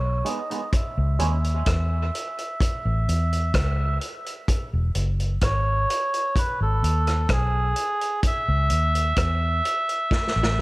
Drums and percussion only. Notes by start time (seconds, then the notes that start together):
0.26 closed hi-hat
0.51 closed hi-hat
0.73 kick, closed hi-hat
1.19 closed hi-hat
1.44 closed hi-hat
1.66 kick, cross-stick, closed hi-hat
2.15 closed hi-hat
2.38 closed hi-hat
2.61 kick, closed hi-hat
3.09 closed hi-hat
3.33 closed hi-hat
3.54 kick, cross-stick, closed hi-hat
4.01 closed hi-hat
4.26 closed hi-hat
4.48 kick, closed hi-hat
4.95 closed hi-hat
5.20 closed hi-hat
5.41 kick, cross-stick, closed hi-hat
5.90 closed hi-hat
6.14 closed hi-hat
6.36 kick, closed hi-hat
6.84 closed hi-hat
7.07 cross-stick, closed hi-hat
7.29 kick, cross-stick, closed hi-hat
7.76 closed hi-hat
8.01 closed hi-hat
8.23 kick, closed hi-hat
8.70 closed hi-hat
8.95 closed hi-hat
9.16 kick, cross-stick, closed hi-hat
9.65 closed hi-hat
9.89 closed hi-hat
10.11 kick, snare
10.27 snare
10.43 snare